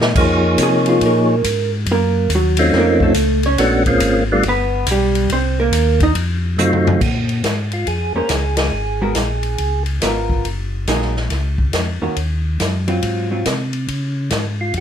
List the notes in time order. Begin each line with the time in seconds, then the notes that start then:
Already playing: A#2
0.01 snare
0.15 F2 F3 A#3 D#4 G#4 C#5, kick, crash
0.58 C3, kick, hi-hat pedal, ride
0.63 G#4
0.86 F4, ride
1.01 A#2, kick, ride
1.06 A#4
1.44 G#2, kick, hi-hat pedal, ride
1.86 F#2, kick, ride
1.92 A#3 A#4
2.30 D#2, kick, hi-hat pedal, ride
2.35 F#3 F#4
2.57 A3 C4 C#4 D#4 F4, ride
2.72 F2, kick, snare
2.77 A#3 A#4
3.00 A3 A4, kick
3.14 C#2, kick, hi-hat pedal, ride
3.43 C#4 C#5, ride
3.58 A#1 A3 B3 C#4 D4 F#4, kick, snare, ride
3.86 G#3 A#3 C4 C#4 F4, kick, ride
4.00 G#1, kick, hi-hat pedal, ride
4.32 G3 A3 B3 D4 F4
4.43 G1, kick, ride
4.48 B3 B4
4.87 B1, kick, hi-hat pedal, ride
4.91 G3 G4
5.15 ride
5.29 C2 C4 C5, kick, ride
5.60 A#3 A#4
5.72 D#2, kick, hi-hat pedal, ride
6.00 D#4 D#5, kick, ride
6.15 F2, kick, ride
6.57 F#2 F#3 A3 C4 D#4 F4, hi-hat pedal, mid tom
6.73 mid tom
6.87 floor tom
7.01 A#2, kick, crash
7.29 ride
7.43 G#2, kick, snare, hi-hat pedal, ride
7.72 F4, ride
7.87 F2 G#4, kick, ride
8.15 F2 A#3 C#4 G#4 A#4 C5
8.29 C#2 G#4, kick, snare, hi-hat pedal, ride
8.57 G#4, snare, ride
8.72 G#1
9.02 G#3 B3 F#4 A#4
9.15 A#1, kick, snare, hi-hat pedal, ride
9.43 ride
9.58 C#2, kick, ride
9.86 ride
10.01 G#1 B3 F4 A#4, kick, snare, hi-hat pedal, ride
10.30 kick
10.44 F#1, kick, ride
10.87 A#1 F#3 A#3 D#4 G#4, kick, snare, hi-hat pedal, ride
11.02 snare
11.16 snare
11.30 C#2, kick, snare, ride
11.58 kick
11.73 F2, kick, snare, hi-hat pedal, ride
12.02 F2 D#3 A#3 C#4 F#4
12.16 D#2, kick, ride
12.60 F#2, kick, snare, hi-hat pedal, ride
12.88 F#3 C4 F4, ride
13.03 G#2, kick, ride
13.31 F#3 C4 F4
13.46 C3, kick, snare, hi-hat pedal, ride
13.73 ride
13.88 C#3, kick, ride
14.30 G#2, kick, snare, hi-hat pedal, ride
14.61 F4
14.74 F2, kick, ride